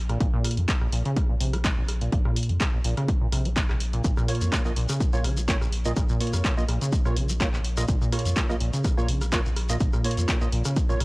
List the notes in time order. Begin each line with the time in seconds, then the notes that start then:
Already playing: A#1
0.09 A#2, cross-stick, closed hi-hat
0.20 A#1 A#2, kick, closed hi-hat
0.33 A#2
0.44 cross-stick, open hi-hat
0.51 closed hi-hat
0.57 F2 A#3, closed hi-hat
0.68 G#3, kick, clap, closed hi-hat
0.81 A#1, cross-stick
0.92 A#1 A#2, open hi-hat
1.05 C#3, closed hi-hat
1.16 A#3, kick, cross-stick, closed hi-hat
1.29 A#2
1.40 A#1 C3, open hi-hat
1.53 A#3, cross-stick, closed hi-hat
1.64 G#3, kick, clap, closed hi-hat
1.77 A#1
1.88 cross-stick, open hi-hat
2.01 A#2, closed hi-hat
2.12 A#1 A#2, kick, closed hi-hat
2.25 A#2, cross-stick
2.36 open hi-hat
2.43 closed hi-hat
2.49 F2 A#3, closed hi-hat
2.60 G#3, kick, cross-stick, clap, closed hi-hat
2.73 A#1
2.84 A#1 A#2, open hi-hat
2.97 C#3, cross-stick, closed hi-hat
3.08 A#3, kick, closed hi-hat
3.21 A#2
3.32 A#1 C3, cross-stick, open hi-hat
3.45 A#3, closed hi-hat
3.56 G#3, kick, clap, closed hi-hat
3.69 A#1, cross-stick, clap
3.80 open hi-hat
3.93 A#2, closed hi-hat
4.04 A#1 A#2, kick, closed hi-hat, shekere
4.17 A#2, cross-stick, shekere
4.28 A#3 F4 C#5, open hi-hat
4.35 closed hi-hat
4.41 F2 A#3, closed hi-hat, shekere
4.52 G#3, kick, cross-stick, clap, closed hi-hat, shekere
4.65 A#1 A#3 F4 D#5, shekere
4.76 A#1 A#2, open hi-hat
4.89 C#3, cross-stick, closed hi-hat, shekere
5.00 A#3, kick, closed hi-hat, shekere
5.13 A#2 A#3 F4 C#5, shekere
5.24 A#1 C#3, cross-stick, open hi-hat
5.37 A#3, closed hi-hat, shekere
5.48 G#3 A#3 F4 C#5, kick, clap, closed hi-hat, shekere
5.61 A#1, cross-stick, shekere
5.72 open hi-hat
5.85 A#2 A#3 F4 D#5, closed hi-hat, shekere
5.96 A#1 A#2, kick, cross-stick, closed hi-hat, shekere
6.09 A#2, shekere
6.20 A#3 F4 C#5, open hi-hat
6.27 closed hi-hat
6.33 F2 A#3, cross-stick, closed hi-hat, shekere
6.44 G#3, kick, clap, closed hi-hat, shekere
6.57 A#1 A#3 F4 D#5, shekere
6.68 A#1 A#2, cross-stick, open hi-hat
6.81 C#3, closed hi-hat, shekere
6.92 A#3, kick, closed hi-hat, shekere
7.05 A#2 A#3 F4 C#5, cross-stick, shekere
7.16 A#1 C#3, open hi-hat
7.29 A#3, closed hi-hat, shekere
7.40 G#3 A#3 F4 C#5, kick, cross-stick, clap, closed hi-hat, shekere
7.53 A#1, clap, shekere
7.64 open hi-hat
7.77 A#2 A#3 F4 D#5, cross-stick, closed hi-hat, shekere
7.88 A#1 A#2, kick, closed hi-hat, shekere
8.01 A#2, shekere
8.12 A#3 F4 C#5, cross-stick, open hi-hat
8.19 closed hi-hat
8.25 F2 A#3, closed hi-hat, shekere
8.36 G#3, kick, clap, closed hi-hat, shekere
8.49 A#1 A#3 F4 D#5, cross-stick, shekere
8.60 A#1 A#2, open hi-hat
8.73 C#3, closed hi-hat, shekere
8.84 A#3, kick, cross-stick, closed hi-hat, shekere
8.97 A#2 A#3 F4 C#5, shekere
9.08 A#1 C#3, open hi-hat
9.21 A#3, cross-stick, closed hi-hat, shekere
9.32 G#3 A#3 F4 C#5, kick, clap, closed hi-hat, shekere
9.45 A#1, shekere
9.56 cross-stick, open hi-hat
9.69 A#2 A#3 F4 D#5, closed hi-hat, shekere
9.80 A#1 A#2, kick, closed hi-hat, shekere
9.93 A#2, cross-stick, shekere
10.04 A#3 F4 C#5, open hi-hat
10.11 closed hi-hat
10.17 F2 A#3, closed hi-hat, shekere
10.28 G#3, kick, cross-stick, clap, closed hi-hat, shekere
10.41 A#1 A#3 F4 D#5, shekere
10.52 A#1 A#2, open hi-hat
10.65 C#3, cross-stick, closed hi-hat, shekere
10.76 A#3, kick, closed hi-hat, shekere
10.89 A#2 A#3 F4 C#5, shekere
11.00 A#1 A#2, cross-stick, open hi-hat